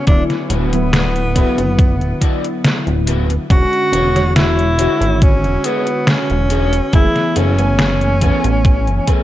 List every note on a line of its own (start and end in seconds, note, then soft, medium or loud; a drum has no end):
0.07 0.22 D1 loud
0.07 0.67 D3 medium
0.07 0.67 F#3 medium
0.07 0.68 B3 medium
0.07 0.23 D4 loud
0.07 0.68 E4 loud
0.07 kick loud
0.07 closed hi-hat medium
0.30 snare soft
0.30 closed hi-hat soft
0.49 1.45 D1 loud
0.49 3.04 B3 loud
0.49 0.73 D4 medium
0.49 0.73 E4 medium
0.49 0.73 F#4 medium
0.49 0.74 B4 medium
0.49 closed hi-hat loud
0.72 1.31 D3 medium
0.72 1.31 F#3 medium
0.72 1.31 B3 medium
0.72 1.32 E4 medium
0.72 closed hi-hat medium
0.93 snare loud
0.93 closed hi-hat medium
1.16 closed hi-hat soft
1.34 3.45 D3 medium
1.34 3.45 F#3 medium
1.34 3.46 B3 medium
1.34 1.58 D4 medium
1.34 1.59 E4 medium
1.34 3.46 E4 loud
1.34 1.59 F#4 medium
1.34 1.59 B4 loud
1.34 kick medium
1.34 closed hi-hat loud
1.58 2.02 F#1 medium
1.58 closed hi-hat medium
1.79 kick loud
1.79 closed hi-hat medium
2.01 2.14 D1 medium
2.01 closed hi-hat soft
2.21 2.44 D4 medium
2.21 2.44 E4 medium
2.21 2.44 F#4 medium
2.21 2.45 D5 loud
2.21 kick medium
2.21 closed hi-hat loud
2.44 closed hi-hat medium
2.65 snare loud
2.65 closed hi-hat medium
2.87 3.38 D1 medium
2.87 closed hi-hat soft
3.06 3.30 D4 medium
3.06 3.30 E4 medium
3.06 3.30 F#4 medium
3.06 3.31 B4 loud
3.06 closed hi-hat loud
3.30 closed hi-hat medium
3.49 3.65 E1 loud
3.49 4.10 D3 medium
3.49 4.10 G#3 medium
3.49 4.11 C#4 medium
3.49 4.32 F#4 loud
3.49 4.11 F#4 loud
3.49 kick loud
3.49 closed hi-hat medium
3.73 closed hi-hat soft
3.92 4.88 E1 loud
3.92 4.16 D4 medium
3.92 4.16 F#4 medium
3.92 4.16 G#4 medium
3.92 4.16 C#5 loud
3.92 closed hi-hat medium
4.15 4.74 D3 medium
4.15 4.74 G#3 medium
4.15 4.75 F#4 medium
4.15 4.74 C#5 medium
4.15 snare soft
4.15 closed hi-hat medium
4.36 5.24 E4 loud
4.36 snare loud
4.36 closed hi-hat medium
4.59 closed hi-hat soft
4.77 6.88 D3 loud
4.77 6.88 G#3 medium
4.77 5.01 D4 medium
4.77 5.02 F#4 medium
4.77 6.89 F#4 loud
4.77 5.02 G#4 medium
4.77 6.88 C#5 medium
4.77 5.02 C#5 loud
4.77 closed hi-hat loud
5.01 5.46 G#1 medium
5.01 closed hi-hat medium
5.22 5.67 C#4 loud
5.22 kick loud
5.22 closed hi-hat medium
5.44 5.57 E1 medium
5.44 closed hi-hat soft
5.64 6.11 B3 loud
5.64 5.87 D4 medium
5.64 5.87 F#4 medium
5.64 5.87 G#4 medium
5.64 5.88 C#5 loud
5.64 closed hi-hat medium
5.87 closed hi-hat medium
6.07 6.94 C#4 loud
6.07 snare loud
6.07 closed hi-hat medium
6.30 6.81 E1 medium
6.30 closed hi-hat soft
6.50 6.73 D4 medium
6.50 6.73 F#4 medium
6.50 6.73 G#4 medium
6.50 6.74 C#5 loud
6.50 closed hi-hat loud
6.73 closed hi-hat medium
6.93 7.07 F#1 loud
6.93 7.53 E3 medium
6.93 7.53 A3 medium
6.93 7.54 B3 medium
6.93 7.38 E4 loud
6.93 7.54 G#4 loud
6.93 kick loud
6.93 closed hi-hat medium
7.16 snare soft
7.16 closed hi-hat soft
7.35 8.31 F#1 loud
7.35 9.23 C#4 loud
7.35 7.58 E4 medium
7.35 7.59 G#4 medium
7.35 7.59 A4 medium
7.35 7.59 B4 medium
7.35 closed hi-hat medium
7.57 8.16 E3 medium
7.57 8.17 A3 medium
7.57 8.17 B3 medium
7.57 8.17 G#5 medium
7.57 closed hi-hat soft
7.79 snare loud
7.79 closed hi-hat medium
8.01 closed hi-hat soft
8.21 9.23 E3 medium
8.21 9.23 A3 medium
8.21 9.23 B3 medium
8.21 8.44 E4 medium
8.21 8.45 G#4 medium
8.21 8.45 A4 medium
8.21 8.45 B4 loud
8.21 9.23 G#5 loud
8.21 kick medium
8.21 closed hi-hat medium
8.44 8.89 A1 medium
8.44 closed hi-hat medium
8.65 kick loud
8.65 closed hi-hat medium
8.87 9.00 F#1 medium
8.87 closed hi-hat soft
9.07 9.23 E4 medium
9.07 9.23 G#4 medium
9.07 9.23 A4 medium
9.07 9.23 B4 medium
9.07 kick medium
9.07 closed hi-hat medium